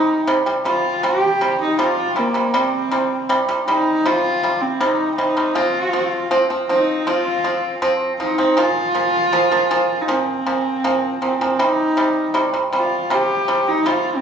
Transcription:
0.00 0.20 C3 medium
0.00 0.21 G3 medium
0.00 0.28 D#4 medium
0.27 0.43 C3 medium
0.27 0.43 G3 medium
0.46 0.62 C3 medium
0.46 0.62 G3 medium
0.65 0.96 C3 medium
0.65 0.96 G3 medium
0.65 1.05 F4 medium
1.03 1.34 C3 medium
1.03 1.34 G3 medium
1.03 1.60 G4 medium
1.41 1.71 C3 medium
1.41 1.72 G3 medium
1.62 1.78 D#4 medium
1.79 2.09 C3 medium
1.79 2.09 G3 medium
1.79 2.20 F4 medium
2.16 2.31 C3 medium
2.16 2.31 G3 medium
2.16 2.57 A#3 medium
2.34 2.50 C3 medium
2.34 2.50 G3 medium
2.54 2.84 C3 medium
2.54 2.84 G3 medium
2.54 3.31 C4 medium
2.91 3.22 C3 medium
2.91 3.22 G3 medium
3.29 3.45 C3 medium
3.29 3.45 G3 medium
3.48 3.64 C3 medium
3.48 3.64 G3 medium
3.68 3.98 C3 medium
3.68 3.98 G3 medium
3.68 4.08 D#4 medium
4.05 4.35 C3 medium
4.05 4.36 G3 medium
4.05 4.63 F4 medium
4.43 4.73 C3 medium
4.43 4.73 G3 medium
4.61 4.82 C4 medium
4.80 5.11 C3 medium
4.80 5.11 G3 medium
4.80 5.15 D#4 medium
5.15 5.33 C3 medium
5.15 5.33 G3 medium
5.15 5.56 D#4 medium
5.37 5.52 C3 medium
5.37 5.52 G3 medium
5.54 5.86 F3 medium
5.54 5.86 C4 medium
5.54 6.30 F4 medium
5.93 6.24 F3 medium
5.93 6.24 C4 medium
6.31 6.46 F3 medium
6.31 6.46 C4 medium
6.50 6.65 F3 medium
6.50 6.65 C4 medium
6.69 6.99 F3 medium
6.69 7.00 C4 medium
6.69 7.09 D#4 medium
7.07 7.37 F3 medium
7.07 7.37 C4 medium
7.07 7.83 F4 medium
7.44 7.75 F3 medium
7.44 7.75 C4 medium
7.82 8.12 F3 medium
7.82 8.12 C4 medium
8.19 8.35 F3 medium
8.19 8.35 C4 medium
8.19 8.59 D#4 medium
8.38 8.54 F3 medium
8.38 8.54 C4 medium
8.57 8.87 A#2 medium
8.57 8.88 F3 medium
8.57 10.03 F4 loud
8.95 9.25 A#2 medium
8.95 9.25 F3 medium
9.33 9.48 A#2 medium
9.33 9.48 F3 medium
9.52 9.67 A#2 medium
9.52 9.67 F3 medium
9.71 10.01 A#2 medium
9.71 10.01 F3 medium
10.01 10.12 D#4 medium
10.08 10.38 A#2 medium
10.08 10.39 F3 medium
10.08 11.23 C4 medium
10.46 10.76 A#2 medium
10.46 10.76 F3 medium
10.84 11.14 A#2 medium
10.84 11.14 F3 medium
11.22 11.37 A#2 medium
11.22 11.37 F3 medium
11.22 11.62 C4 medium
11.41 11.56 A#2 medium
11.41 11.56 F3 medium
11.59 11.89 C3 medium
11.59 11.90 G3 medium
11.59 12.36 D#4 medium
11.97 12.27 C3 medium
11.97 12.27 G3 medium
12.34 12.49 C3 medium
12.34 12.50 G3 medium
12.53 12.69 C3 medium
12.53 12.69 G3 medium
12.72 13.03 C3 medium
12.72 13.03 G3 medium
12.77 13.15 F4 medium
13.10 13.41 C3 medium
13.10 13.41 G3 medium
13.10 13.69 G4 medium
13.48 13.78 C3 medium
13.48 13.78 G3 medium
13.68 13.88 D#4 medium
13.86 14.16 C3 medium
13.86 14.16 G3 medium
13.86 14.17 F4 medium
14.16 14.21 C4 medium

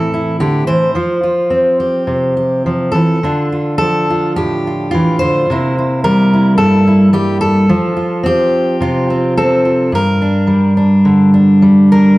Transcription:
0.00 0.92 A2 medium
0.00 0.39 E3 medium
0.00 0.92 C4 soft
0.00 0.12 E4 soft
0.00 0.40 A4 medium
0.14 0.93 E4 soft
0.40 0.67 D3 medium
0.40 0.67 G4 medium
0.67 0.95 E3 medium
0.67 1.79 C5 medium
0.95 2.65 F3 medium
0.95 1.23 F4 soft
1.23 3.19 F4 soft
1.50 3.18 C4 medium
1.80 2.36 G4 soft
2.07 2.93 C3 medium
2.37 2.91 G4 soft
2.66 2.94 F3 medium
2.92 3.22 E3 medium
2.92 3.77 A4 medium
3.23 4.93 D3 medium
3.23 5.46 D4 soft
3.23 3.51 F4 soft
3.52 4.09 F4 soft
3.78 5.49 F3 medium
3.78 4.35 A4 medium
4.10 4.65 F4 soft
4.36 5.46 A2 medium
4.36 5.19 G4 medium
4.67 4.90 F4 soft
4.91 5.21 E3 medium
4.91 5.48 F4 medium
5.19 5.49 D3 medium
5.19 6.03 C5 loud
5.50 6.60 C3 medium
5.50 7.71 A#3 soft
5.50 5.77 E4 soft
5.78 6.32 E4 soft
6.04 7.12 G3 medium
6.04 6.57 A#4 loud
6.33 6.86 E4 soft
6.58 7.70 G2 medium
6.58 7.13 A4 medium
6.87 7.67 E4 soft
7.13 7.66 G3 medium
7.13 7.40 G4 medium
7.41 8.25 A4 medium
7.69 9.92 F3 medium
7.69 7.95 F4 soft
7.97 8.80 F4 soft
8.23 9.08 C4 medium
8.23 9.37 G4 medium
8.81 9.92 C3 medium
8.81 9.64 F4 medium
9.10 9.37 C4 soft
9.37 9.90 C4 medium
9.37 9.93 A4 medium
9.65 9.89 F4 soft
9.92 12.18 G2 medium
9.92 11.91 A#4 medium
10.22 10.76 D4 soft
10.47 11.61 G3 medium
10.77 11.33 D4 soft
11.05 12.17 D3 medium
11.34 11.91 D4 soft
11.62 12.17 G3 medium
11.92 12.18 D4 soft
11.92 12.18 A#4 medium

